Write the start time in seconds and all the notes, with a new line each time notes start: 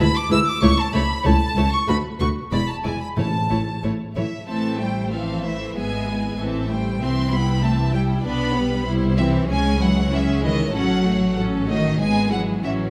0.00 D2 B5
0.16 D6
0.31 D2 G#3 E4 B4 E6
0.46 D6
0.61 C#2 A3 E4 C#5 C#6
0.78 A5
0.92 C#2 A3 E4 C#5 B5
1.24 C#2 A3 E4 C#5 A5
1.56 C#2 A3 E4 C#5
1.71 C#6
1.87 D2 A3 F#4 B4 B5
2.20 D2 A3 F#4 B4 C#6
2.51 E1 E2 G#3 E4 D5 B5
2.69 A5
2.84 E1 E2 G#3 E4 D5 G#5
3.01 B5
3.17 A1 A2 A3 E4 C#5 A5
3.50 A1 A2 A3 E4 C#5
3.83 A1 A2 A3 E4 C#5
4.16 A1 A2 E3 A3 E4 C#5 E5
4.48 A1 E3 A3 C4 A4 E5 A5
4.80 G3 A3 E4 C5 G5
5.13 E3 F3 C4 A4 E5 F5
5.44 E3 A3 E4 C5 E5
5.75 G#1 G#3 B3 G#4 E5 G#5
6.06 G#3 B3 E4 G#5
6.38 A1 E3 C4 A4 E5
6.69 G3 A3 E4 C5 G5
7.00 C2 E3 C4 G4 E5 C6
7.31 G3 B3 E4 G5 B5
7.62 E3 A3 C4 G4 E5 A5
7.93 G3 E4 G5
8.24 B1 B3 D4 B4 D5 B5
8.55 G3 B3 G4 B4
8.87 C2 G3 E4 C5
9.18 E3 C4 G4 E5
9.49 C#2 G#3 C#4 G#4 G#5
9.80 E3 F#3 G#3 E4 C#5 F#5
10.11 E3 G#3 C#4 G#4 E5
10.43 D#3 E3 G#3 E4 C#5 D#5
10.73 A1 F#3 C#4 A4 F#5
11.05 A3 F#4 C#5
11.36 F#3 C#4 A4
11.67 D#3 A3 F#4 C#5 D#5
12.00 G#1 G#3 B3 G#4 B4 G#5
12.31 E3 F#3 G#3 E4 G#4 F#5
12.63 A1 E3 F#3 C#4 F#4 E5